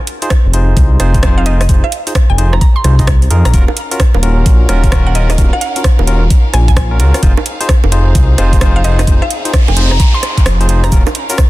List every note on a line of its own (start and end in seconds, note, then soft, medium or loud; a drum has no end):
0.07 closed hi-hat loud
0.22 0.32 D#4 medium
0.22 0.32 F4 medium
0.22 0.32 G#4 medium
0.22 0.32 C5 loud
0.22 closed hi-hat medium
0.30 kick loud
0.30 cross-stick loud
0.30 closed hi-hat medium
0.45 0.75 F1 medium
0.54 0.98 D#4 medium
0.54 0.98 F4 medium
0.54 0.98 G#4 medium
0.54 0.98 C5 loud
0.54 closed hi-hat loud
0.77 0.97 C2 medium
0.77 kick loud
0.77 closed hi-hat medium
1.00 1.67 F1 medium
1.00 1.21 D#4 medium
1.00 1.21 F4 medium
1.00 1.21 G#4 medium
1.00 1.21 C5 loud
1.00 cross-stick medium
1.00 closed hi-hat loud
1.14 kick medium
1.14 closed hi-hat soft
1.23 1.44 D#4 medium
1.23 1.44 F4 medium
1.23 1.44 G#4 medium
1.23 1.44 C5 medium
1.23 kick loud
1.23 cross-stick loud
1.23 closed hi-hat medium
1.38 1.44 F5 medium
1.46 1.61 D#4 medium
1.46 1.61 F4 medium
1.46 1.61 G#4 medium
1.46 1.61 C5 medium
1.46 1.55 D#5 medium
1.46 closed hi-hat loud
1.61 1.66 D#5 medium
1.61 cross-stick medium
1.61 closed hi-hat medium
1.69 1.81 F1 loud
1.69 1.85 D#4 medium
1.69 1.85 F4 medium
1.69 1.85 G#4 medium
1.69 1.85 C5 medium
1.69 kick loud
1.69 closed hi-hat medium
1.84 1.90 F5 medium
1.84 cross-stick soft
1.92 closed hi-hat loud
2.07 2.13 D#4 medium
2.07 2.12 F4 medium
2.07 2.13 G#4 medium
2.07 2.12 C5 medium
2.07 closed hi-hat medium
2.15 kick loud
2.15 cross-stick loud
2.15 closed hi-hat medium
2.30 2.59 F1 medium
2.30 2.46 G#5 medium
2.38 2.54 D#4 medium
2.38 2.54 F4 medium
2.38 2.54 G#4 medium
2.38 2.54 C5 loud
2.38 closed hi-hat medium
2.53 2.58 A#5 medium
2.53 cross-stick medium
2.61 2.71 A#5 medium
2.61 kick loud
2.61 closed hi-hat medium
2.76 3.22 C6 medium
2.84 3.28 C2 medium
2.84 2.94 D#4 medium
2.84 2.94 F4 medium
2.84 2.94 G#4 medium
2.84 2.94 C5 medium
2.84 cross-stick soft
2.84 closed hi-hat loud
2.99 3.09 D#4 medium
2.99 3.09 F4 medium
2.99 3.09 G#4 medium
2.99 3.09 D#5 medium
2.99 kick medium
2.99 closed hi-hat soft
3.07 kick loud
3.07 cross-stick loud
3.07 closed hi-hat medium
3.22 closed hi-hat soft
3.31 3.43 F2 loud
3.31 3.52 D#4 medium
3.31 3.52 F4 medium
3.31 3.52 G#4 medium
3.31 3.52 A#4 medium
3.31 closed hi-hat loud
3.45 3.52 A#1 medium
3.45 3.59 A#5 medium
3.45 cross-stick medium
3.45 closed hi-hat medium
3.54 3.66 D#1 medium
3.54 7.19 C#4 medium
3.54 3.64 C#4 medium
3.54 7.19 D#4 medium
3.54 3.64 F4 medium
3.54 3.64 F#4 medium
3.54 7.19 A#4 medium
3.54 3.64 A#4 loud
3.54 10.88 F5 medium
3.54 kick loud
3.54 closed hi-hat medium
3.68 cross-stick soft
3.68 high bongo medium
3.77 closed hi-hat loud
3.91 4.01 C#4 medium
3.91 4.01 F4 medium
3.91 4.01 F#4 medium
3.91 4.01 A#4 loud
3.91 closed hi-hat medium
4.00 kick loud
4.00 cross-stick loud
4.00 closed hi-hat medium
4.14 4.44 D#1 medium
4.14 high bongo medium
4.23 4.67 C#4 medium
4.23 4.67 F4 medium
4.23 4.67 F#4 medium
4.23 4.67 A#4 loud
4.23 closed hi-hat loud
4.46 4.66 A#1 medium
4.46 kick loud
4.46 closed hi-hat medium
4.69 5.36 D#1 medium
4.69 4.90 C#4 medium
4.69 4.90 F4 medium
4.69 4.90 F#4 medium
4.69 4.90 A#4 loud
4.69 cross-stick soft
4.69 closed hi-hat loud
4.84 kick medium
4.84 closed hi-hat soft
4.92 5.13 C#4 medium
4.92 5.13 F4 medium
4.92 5.13 F#4 medium
4.92 5.13 A#4 medium
4.92 kick loud
4.92 cross-stick loud
4.92 closed hi-hat medium
5.07 5.13 F#5 medium
5.15 5.31 C#4 medium
5.15 5.31 F4 medium
5.15 5.31 F#4 medium
5.15 5.31 A#4 medium
5.15 5.25 D#5 medium
5.15 closed hi-hat loud
5.30 5.35 D#5 medium
5.30 cross-stick medium
5.30 closed hi-hat medium
5.30 high bongo medium
5.38 5.51 D#1 medium
5.38 5.54 C#4 medium
5.38 5.54 F4 medium
5.38 5.54 F#4 medium
5.38 5.54 A#4 medium
5.38 kick loud
5.38 closed hi-hat medium
5.53 5.60 F#5 medium
5.53 cross-stick soft
5.61 5.80 F#5 medium
5.61 closed hi-hat loud
5.76 5.82 C#4 medium
5.76 5.82 F4 medium
5.76 5.82 F#4 medium
5.76 5.82 A#4 medium
5.76 closed hi-hat medium
5.84 kick loud
5.84 cross-stick loud
5.84 closed hi-hat medium
5.99 6.28 D#1 medium
5.99 high bongo medium
6.07 6.23 C#4 medium
6.07 6.23 F4 medium
6.07 6.23 F#4 medium
6.07 6.23 A#4 loud
6.07 closed hi-hat loud
6.30 kick loud
6.30 closed hi-hat medium
6.53 7.01 A#1 medium
6.53 6.65 G#5 medium
6.53 cross-stick soft
6.53 closed hi-hat loud
6.68 6.74 G#5 medium
6.68 kick medium
6.68 closed hi-hat soft
6.77 6.86 G#5 medium
6.77 kick loud
6.77 cross-stick loud
6.77 closed hi-hat medium
6.91 6.97 C#4 medium
6.91 6.97 F4 medium
6.91 6.97 F#4 medium
6.91 6.97 A#4 loud
7.00 7.12 C#2 medium
7.00 7.21 C#4 medium
7.00 7.21 F4 medium
7.00 7.21 F#4 medium
7.00 7.21 A#4 medium
7.00 closed hi-hat loud
7.14 cross-stick medium
7.14 closed hi-hat medium
7.23 7.35 F1 loud
7.23 10.88 C4 medium
7.23 7.33 D#4 medium
7.23 10.88 D#4 medium
7.23 7.33 F4 medium
7.23 7.33 G#4 medium
7.23 10.88 G#4 medium
7.23 7.33 C5 loud
7.23 kick loud
7.23 closed hi-hat medium
7.37 cross-stick soft
7.37 high bongo medium
7.46 closed hi-hat loud
7.61 7.70 D#4 medium
7.61 7.70 F4 medium
7.61 7.70 G#4 medium
7.61 7.70 C5 loud
7.61 closed hi-hat medium
7.69 kick loud
7.69 cross-stick loud
7.69 closed hi-hat medium
7.84 8.13 F1 medium
7.84 high bongo medium
7.92 8.36 D#4 medium
7.92 8.36 F4 medium
7.92 8.36 G#4 medium
7.92 8.36 C5 loud
7.92 closed hi-hat loud
8.15 8.36 C2 medium
8.15 kick loud
8.15 closed hi-hat medium
8.38 9.05 F1 loud
8.38 8.59 D#4 medium
8.38 8.59 F4 medium
8.38 8.59 G#4 medium
8.38 8.59 C5 medium
8.38 cross-stick soft
8.38 closed hi-hat loud
8.53 kick medium
8.53 closed hi-hat soft
8.61 8.82 D#4 medium
8.61 8.82 F4 medium
8.61 8.82 G#4 medium
8.61 8.82 C5 medium
8.61 kick loud
8.61 cross-stick loud
8.61 closed hi-hat medium
8.76 8.83 F5 medium
8.84 9.00 D#4 medium
8.84 9.00 F4 medium
8.84 9.00 G#4 medium
8.84 9.00 C5 medium
8.84 8.94 D#5 medium
8.84 closed hi-hat loud
8.99 9.04 D#5 medium
8.99 cross-stick medium
8.99 closed hi-hat medium
8.99 high bongo medium
9.07 9.20 F1 loud
9.07 9.23 D#4 medium
9.07 9.23 F4 medium
9.07 9.23 G#4 medium
9.07 9.23 C5 medium
9.07 kick loud
9.07 closed hi-hat medium
9.07 noise sweep medium
9.22 9.29 F5 medium
9.22 cross-stick soft
9.30 closed hi-hat loud
9.45 9.51 D#4 medium
9.45 9.51 F4 medium
9.45 9.51 G#4 medium
9.45 9.51 C5 medium
9.45 closed hi-hat medium
9.54 kick loud
9.54 cross-stick loud
9.54 closed hi-hat medium
9.68 9.98 F1 medium
9.68 9.84 G#5 medium
9.68 high bongo medium
9.77 9.92 D#4 medium
9.77 9.92 F4 medium
9.77 9.92 G#4 medium
9.77 9.92 C5 loud
9.77 closed hi-hat loud
9.91 9.97 A#5 medium
9.91 cross-stick medium
10.00 10.09 A#5 medium
10.00 kick loud
10.00 closed hi-hat medium
10.14 10.61 C6 medium
10.23 cross-stick medium
10.23 closed hi-hat loud
10.38 kick medium
10.38 closed hi-hat soft
10.46 10.90 F1 medium
10.46 cross-stick loud
10.46 closed hi-hat medium
10.61 10.66 D#4 medium
10.61 10.66 F4 medium
10.61 10.66 G#4 medium
10.61 10.66 C5 loud
10.61 closed hi-hat soft
10.69 10.90 D#4 medium
10.69 10.90 F4 medium
10.69 10.90 G#4 medium
10.69 10.90 C5 medium
10.69 closed hi-hat loud
10.84 10.92 A#5 medium
10.84 cross-stick medium
10.84 closed hi-hat medium
10.92 11.05 D#1 loud
10.92 11.50 C#4 medium
10.92 11.02 C#4 medium
10.92 11.50 D#4 medium
10.92 11.02 F4 medium
10.92 11.02 F#4 medium
10.92 11.50 A#4 medium
10.92 11.02 A#4 loud
10.92 11.50 F5 medium
10.92 kick loud
10.92 closed hi-hat medium
10.92 shaker medium
11.07 cross-stick soft
11.07 high bongo medium
11.07 shaker soft
11.15 closed hi-hat loud
11.30 11.40 C#4 loud
11.30 11.40 F4 medium
11.30 11.40 F#4 medium
11.30 11.40 A#4 loud
11.30 closed hi-hat medium
11.30 shaker medium
11.38 kick loud
11.38 cross-stick loud
11.38 closed hi-hat medium
11.38 shaker medium